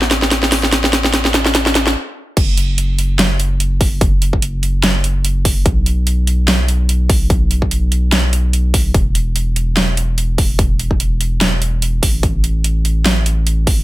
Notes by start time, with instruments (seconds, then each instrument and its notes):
Already playing: sub bass A1
0.02 snare
0.11 snare, closed hi-hat
0.22 snare
0.31 snare, closed hi-hat
0.43 snare
0.52 snare, open hi-hat
0.63 snare
0.72 snare, closed hi-hat
0.84 snare
0.93 snare, closed hi-hat
1.04 snare
1.14 snare, closed hi-hat
1.25 snare
1.34 snare, closed hi-hat
1.46 snare
1.55 snare, closed hi-hat
1.66 snare
1.75 snare, closed hi-hat
1.87 snare
2.37 sub bass F#1, kick, closed hi-hat, crash
2.57 closed hi-hat
2.78 closed hi-hat
2.99 closed hi-hat
3.19 snare, closed hi-hat
3.40 closed hi-hat
3.60 closed hi-hat
3.81 kick, open hi-hat
4.01 kick, closed hi-hat
4.22 closed hi-hat
4.33 kick
4.42 closed hi-hat
4.63 closed hi-hat
4.83 snare, closed hi-hat
5.04 closed hi-hat
5.25 closed hi-hat
5.45 kick, open hi-hat
5.66 sub bass B1, kick, closed hi-hat
5.86 closed hi-hat
6.07 closed hi-hat
6.27 closed hi-hat
6.48 snare, closed hi-hat
6.68 closed hi-hat
6.89 closed hi-hat
7.10 kick, open hi-hat
7.30 kick, closed hi-hat
7.51 closed hi-hat
7.62 kick
7.71 closed hi-hat
7.92 closed hi-hat
8.12 snare, closed hi-hat
8.33 closed hi-hat
8.53 closed hi-hat
8.74 kick, open hi-hat
8.94 sub bass E1, kick, closed hi-hat
9.15 closed hi-hat
9.36 closed hi-hat
9.56 closed hi-hat
9.77 snare, closed hi-hat
9.97 closed hi-hat
10.18 closed hi-hat
10.38 kick, open hi-hat
10.59 kick, closed hi-hat
10.79 closed hi-hat
10.91 kick
11.00 closed hi-hat
11.21 closed hi-hat
11.41 snare, closed hi-hat
11.62 closed hi-hat
11.82 closed hi-hat
12.03 sub bass A1, kick, open hi-hat
12.23 kick, closed hi-hat
12.44 closed hi-hat
12.64 closed hi-hat
12.85 closed hi-hat
13.05 snare, closed hi-hat
13.26 closed hi-hat
13.47 closed hi-hat
13.67 kick, open hi-hat